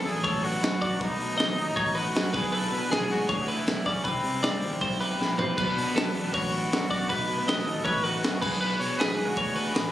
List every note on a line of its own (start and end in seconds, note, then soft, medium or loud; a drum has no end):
0.00 0.62 B2 medium
0.00 0.82 D3 medium
0.00 0.46 F#3 medium
0.00 0.44 B3 medium
0.00 0.42 D4 medium
0.00 0.24 A4 medium
0.05 0.13 E2 medium
0.05 0.26 G#4 loud
0.05 open hi-hat medium
0.14 0.54 A1 medium
0.24 0.46 A4 loud
0.24 0.43 C#5 loud
0.24 kick loud
0.24 open hi-hat medium
0.43 0.63 F#3 medium
0.43 0.64 B3 medium
0.43 0.64 D4 medium
0.43 1.01 F#4 loud
0.43 0.81 B4 medium
0.43 open hi-hat medium
0.62 0.94 F#2 medium
0.62 0.99 B2 loud
0.62 0.84 F#3 medium
0.62 0.83 B3 loud
0.62 0.80 D4 loud
0.62 snare loud
0.62 open hi-hat medium
0.82 1.00 F#3 medium
0.82 1.02 B3 medium
0.82 0.99 D4 medium
0.82 1.01 D5 medium
0.82 kick medium
0.82 open hi-hat medium
0.99 1.09 B1 loud
0.99 1.37 B2 medium
0.99 1.39 F#3 loud
0.99 1.39 A3 loud
0.99 1.40 D#4 loud
0.99 1.99 D#4 loud
0.99 1.37 B4 loud
0.99 kick loud
0.99 open hi-hat medium
1.18 1.39 B2 medium
1.18 open hi-hat medium
1.38 1.57 F#2 medium
1.38 2.14 B2 medium
1.38 1.97 F#3 medium
1.38 1.96 A3 medium
1.38 1.94 D#4 medium
1.38 1.76 D#5 medium
1.38 snare loud
1.38 open hi-hat medium
1.57 1.65 D#2 loud
1.57 open hi-hat medium
1.67 2.07 A1 medium
1.76 1.95 C#5 loud
1.76 kick loud
1.76 open hi-hat medium
1.95 2.15 F#3 medium
1.95 2.16 A3 medium
1.95 2.17 D#4 medium
1.95 2.36 F#4 loud
1.95 2.32 B4 medium
1.95 open hi-hat medium
2.14 2.30 F#2 medium
2.14 2.33 B2 loud
2.14 2.33 F#3 medium
2.14 2.34 A3 loud
2.14 2.34 D#4 loud
2.14 snare loud
2.14 open hi-hat medium
2.33 2.66 B1 loud
2.33 2.52 B2 medium
2.33 2.53 E3 medium
2.33 2.54 B3 medium
2.33 2.54 D4 medium
2.33 2.55 G#4 medium
2.33 2.55 G#4 loud
2.33 2.51 B4 medium
2.33 kick loud
2.33 snare soft
2.33 open hi-hat medium
2.52 3.10 B2 loud
2.52 2.90 E3 loud
2.52 2.91 B3 loud
2.52 2.92 D4 loud
2.52 2.93 G#4 loud
2.52 2.72 A4 loud
2.52 2.91 B4 medium
2.52 open hi-hat medium
2.71 2.92 B2 medium
2.71 2.93 B4 loud
2.71 open hi-hat medium
2.90 3.11 B1 medium
2.90 3.66 E3 medium
2.90 3.50 B3 medium
2.90 3.47 D4 medium
2.90 3.29 G#4 medium
2.90 3.10 G#4 loud
2.90 3.46 G#4 medium
2.90 snare loud
2.90 open hi-hat medium
3.02 snare soft
3.10 3.18 G#2 loud
3.10 3.19 F#4 loud
3.10 open hi-hat medium
3.19 3.59 D2 medium
3.29 3.43 G#4 loud
3.29 3.48 C#5 medium
3.29 kick loud
3.29 open hi-hat medium
3.42 3.50 F#4 medium
3.47 3.67 B3 medium
3.47 3.67 D4 medium
3.47 3.88 E4 loud
3.47 3.68 G#4 medium
3.47 3.86 B4 medium
3.47 open hi-hat medium
3.66 3.98 B1 medium
3.66 4.03 B2 loud
3.66 4.04 E3 loud
3.66 3.88 B3 loud
3.66 3.86 D4 loud
3.66 3.84 G#4 loud
3.66 snare loud
3.66 open hi-hat medium
3.85 4.05 B3 medium
3.85 4.08 C#4 medium
3.85 4.04 D4 medium
3.85 4.04 G#4 medium
3.85 4.04 D5 medium
3.85 kick medium
3.85 snare soft
3.85 open hi-hat medium
4.04 4.13 C2 loud
4.04 4.62 C3 loud
4.04 4.41 G3 loud
4.04 4.42 C4 loud
4.04 4.93 C4 medium
4.04 4.43 E4 loud
4.04 4.44 G4 loud
4.04 4.42 B4 medium
4.04 kick loud
4.04 open hi-hat medium
4.24 4.43 C3 medium
4.24 open hi-hat medium
4.42 4.64 G2 medium
4.42 5.18 G3 medium
4.42 5.02 C4 medium
4.42 5.00 E4 medium
4.42 4.98 G4 medium
4.42 4.81 D5 medium
4.42 snare loud
4.42 open hi-hat medium
4.62 4.70 E2 loud
4.62 open hi-hat medium
4.72 5.11 B1 medium
4.81 5.00 C5 medium
4.81 kick loud
4.81 open hi-hat medium
4.99 5.19 C4 medium
4.99 5.19 E4 medium
4.99 5.20 G4 medium
4.99 5.38 B4 medium
4.99 open hi-hat medium
5.18 5.51 A#1 medium
5.18 5.56 C3 medium
5.18 5.56 G3 loud
5.18 5.39 C4 loud
5.18 5.38 E4 loud
5.18 5.36 G4 loud
5.18 snare medium
5.38 5.57 C4 medium
5.38 5.57 E4 medium
5.38 5.56 G4 medium
5.38 5.57 B4 medium
5.38 5.58 C5 medium
5.38 floor tom medium
5.56 5.65 B1 loud
5.56 5.94 B2 loud
5.56 5.95 F#3 loud
5.56 5.96 B3 loud
5.56 5.96 D4 loud
5.56 6.35 B4 loud
5.56 5.95 B4 loud
5.56 kick loud
5.56 crash medium
5.77 5.97 B2 medium
5.77 open hi-hat medium
5.94 6.15 F#2 medium
5.94 6.70 B2 medium
5.94 6.54 F#3 medium
5.94 6.53 B3 medium
5.94 6.50 D4 medium
5.94 6.34 A4 medium
5.94 snare loud
5.94 open hi-hat medium
6.07 snare soft
6.15 6.22 E2 loud
6.15 open hi-hat medium
6.25 6.64 A1 medium
6.33 7.11 F#4 loud
6.33 6.53 C#5 medium
6.33 kick loud
6.33 open hi-hat medium
6.51 6.71 F#3 medium
6.51 6.72 B3 medium
6.51 6.72 D4 medium
6.51 6.90 B4 medium
6.51 open hi-hat medium
6.70 7.03 F#2 medium
6.70 7.08 B2 loud
6.70 6.92 F#3 medium
6.70 6.91 B3 loud
6.70 6.88 D4 loud
6.70 snare loud
6.70 open hi-hat medium
6.90 7.09 F#3 medium
6.90 7.11 B3 medium
6.90 7.08 D4 medium
6.90 7.09 D5 medium
6.90 kick medium
6.90 snare soft
6.90 open hi-hat medium
7.08 7.18 B1 loud
7.08 7.45 B2 loud
7.08 7.47 F#3 loud
7.08 7.47 A3 loud
7.08 7.48 D#4 loud
7.08 7.47 B4 loud
7.08 7.36 B4 loud
7.08 kick loud
7.08 open hi-hat medium
7.29 7.49 B2 medium
7.29 open hi-hat medium
7.36 7.67 B4 medium
7.46 7.66 F#2 medium
7.46 8.22 B2 medium
7.46 8.05 F#3 medium
7.46 8.04 A3 medium
7.46 8.02 D#4 medium
7.46 7.84 D#5 medium
7.46 snare loud
7.46 open hi-hat medium
7.59 snare soft
7.66 7.74 D#2 medium
7.66 7.86 A4 loud
7.66 open hi-hat medium
7.76 8.15 A1 medium
7.85 8.06 B4 loud
7.85 8.03 C#5 medium
7.85 kick loud
7.85 open hi-hat medium
8.03 8.23 F#3 medium
8.03 8.24 A3 medium
8.03 8.25 D#4 medium
8.03 8.42 F#4 loud
8.03 8.41 B4 medium
8.03 open hi-hat medium
8.23 8.39 F#2 medium
8.23 8.41 B2 medium
8.23 8.41 F#3 loud
8.23 8.42 A3 loud
8.23 8.42 D#4 loud
8.23 snare loud
8.23 open hi-hat medium
8.41 8.74 B1 loud
8.41 8.59 B2 medium
8.41 8.61 E3 medium
8.41 8.62 B3 medium
8.41 8.62 D4 medium
8.41 8.60 G#4 loud
8.41 8.62 G#4 medium
8.41 8.59 B4 medium
8.41 kick loud
8.41 snare soft
8.41 crash loud
8.60 9.18 B2 loud
8.60 8.98 E3 loud
8.60 8.99 B3 loud
8.60 8.99 D4 loud
8.60 9.00 G#4 loud
8.60 8.99 B4 medium
8.60 8.79 B4 loud
8.79 9.01 B2 loud
8.79 8.96 C#5 loud
8.79 open hi-hat medium
8.97 9.19 B1 medium
8.97 9.74 E3 medium
8.97 9.58 B3 medium
8.97 9.56 D4 medium
8.97 9.37 G#4 medium
8.97 9.54 G#4 loud
8.97 9.28 B4 loud
8.97 open hi-hat medium
9.01 snare loud
9.10 snare soft
9.18 9.26 G#2 loud
9.18 open hi-hat medium
9.27 9.67 D2 medium
9.27 9.76 F#4 loud
9.37 9.55 C#5 medium
9.37 kick loud
9.37 open hi-hat medium
9.55 9.75 B3 medium
9.55 9.75 D4 medium
9.55 9.76 G#4 medium
9.55 9.92 B4 medium
9.55 open hi-hat medium
9.74 9.92 A1 medium
9.74 9.92 B2 loud
9.74 9.92 E3 loud
9.74 9.92 B3 loud
9.74 9.92 D4 loud
9.74 9.92 G#4 medium
9.74 9.91 G#4 loud
9.74 snare loud
9.74 open hi-hat medium